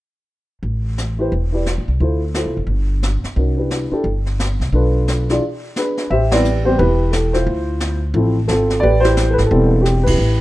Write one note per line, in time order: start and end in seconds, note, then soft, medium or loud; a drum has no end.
0.63 1.28 A1 medium
0.63 brush sweep soft
0.98 snare soft
0.98 hi-hat pedal soft
1.19 1.30 E4 medium
1.19 1.30 G4 medium
1.19 1.31 B4 medium
1.19 1.31 C5 medium
1.32 1.74 E1 medium
1.32 brush sweep soft
1.52 1.64 E4 soft
1.52 1.65 G4 soft
1.52 1.65 B4 soft
1.52 1.65 D5 medium
1.66 snare soft
1.66 hi-hat pedal soft
1.78 1.87 A1 soft
1.88 1.99 C2 medium
2.00 2.43 D2 medium
2.00 2.19 E4 soft
2.00 2.20 F4 soft
2.00 2.20 A4 soft
2.00 2.20 C5 medium
2.00 brush sweep soft
2.34 2.54 E4 soft
2.34 2.54 F4 soft
2.34 2.54 A4 soft
2.34 2.54 C5 soft
2.34 snare soft
2.34 hi-hat pedal soft
2.46 2.56 C2 soft
2.57 2.66 F#1 medium
2.67 3.19 G1 medium
2.67 brush sweep soft
3.03 snare soft
3.03 hi-hat pedal soft
3.24 muted upright bass stroke soft
3.24 snare soft
3.36 3.88 C2 medium
3.36 3.56 C#4 soft
3.36 3.56 D#4 soft
3.36 3.56 F#4 soft
3.36 3.57 A#4 soft
3.36 brush sweep soft
3.57 3.88 D4 soft
3.57 3.88 E4 soft
3.57 3.88 G4 soft
3.57 3.88 B4 soft
3.71 snare soft
3.71 hi-hat pedal soft
3.91 4.03 D4 medium
3.91 4.04 E4 medium
3.91 4.04 G4 medium
3.91 4.04 A4 medium
3.91 muted upright bass stroke soft
4.04 4.56 G1 medium
4.04 brush sweep soft
4.26 snare soft
4.40 snare soft
4.40 hi-hat pedal soft
4.60 4.72 C2 medium
4.60 snare soft
4.72 5.38 B1 medium
4.72 5.25 D4 medium
4.72 5.25 F4 medium
4.72 5.25 A4 medium
4.72 5.26 B4 medium
4.72 brush sweep soft
5.08 snare soft
5.08 hi-hat pedal soft
5.29 5.41 E3 medium
5.29 5.41 D4 medium
5.29 5.41 F4 medium
5.29 5.42 G#4 medium
5.29 5.42 D5 medium
5.29 snare soft
5.42 brush sweep soft
5.76 6.09 D4 soft
5.76 6.09 G#4 medium
5.76 6.12 B4 medium
5.76 snare soft
5.76 hi-hat pedal soft
5.97 snare soft
6.10 6.75 A1 medium
6.10 6.31 G4 medium
6.10 6.64 C5 medium
6.10 6.30 E5 medium
6.10 brush sweep soft
6.31 6.43 G3 medium
6.31 6.44 B3 medium
6.31 6.44 C4 medium
6.31 6.44 E4 medium
6.31 6.66 G4 medium
6.31 6.77 B4 medium
6.31 6.67 D5 medium
6.31 snare medium
6.31 ride medium
6.45 hi-hat pedal soft
6.64 6.77 G3 medium
6.64 6.77 B3 medium
6.64 6.77 C4 medium
6.64 6.78 G4 medium
6.64 6.79 C5 medium
6.78 7.44 E1 medium
6.78 7.33 E4 medium
6.78 7.44 G4 medium
6.78 7.10 B4 medium
6.78 brush sweep soft
7.12 7.34 A4 medium
7.12 snare medium
7.12 hi-hat pedal medium
7.33 7.99 E4 medium
7.33 7.98 F4 medium
7.33 7.98 C5 medium
7.33 snare soft
7.46 8.11 D2 medium
7.46 brush sweep soft
7.80 snare medium
7.80 hi-hat pedal soft
8.14 8.46 A1 medium
8.14 8.34 F3 medium
8.14 8.34 A3 medium
8.14 8.34 C4 medium
8.14 8.35 E4 medium
8.14 brush sweep soft
8.48 8.81 G#1 medium
8.48 8.81 C4 medium
8.48 8.81 F4 medium
8.48 8.83 A4 medium
8.48 snare medium
8.48 hi-hat pedal medium
8.70 snare soft
8.80 9.35 A1 medium
8.80 9.02 G4 medium
8.80 9.32 B4 medium
8.80 9.03 D5 loud
8.80 brush sweep soft
9.00 9.49 E4 medium
9.00 9.68 G4 medium
9.00 9.32 C5 loud
9.04 snare soft
9.17 snare medium
9.17 hi-hat pedal soft
9.30 9.37 A4 medium
9.30 9.38 B4 medium
9.38 9.50 G#1 medium
9.38 snare soft
9.46 9.80 A4 medium
9.51 10.16 E1 medium
9.51 9.70 G3 medium
9.51 9.71 B3 medium
9.51 10.15 C4 medium
9.51 10.06 E4 medium
9.51 brush sweep soft
9.82 10.05 G4 medium
9.82 snare medium
9.82 hi-hat pedal soft
10.03 10.41 B4 medium
10.03 kick medium
10.03 ride medium
10.08 10.41 E4 medium
10.08 10.41 G4 medium
10.18 10.41 A1 medium
10.18 brush sweep soft